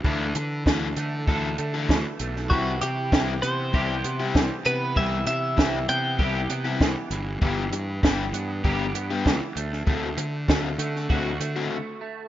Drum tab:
HH |--x---x---x---x-|--x---x---x---x-|--x---x---x---x-|--x---x---x---x-|
SD |----o-------o--o|----o-------o---|----o-------o---|----o-------o--o|
BD |o---o---o---o---|o---o---o---o---|o---o---o---o---|o---o---o---o---|

HH |--x---x---x-----|
SD |----o--o--------|
BD |o---o---o-------|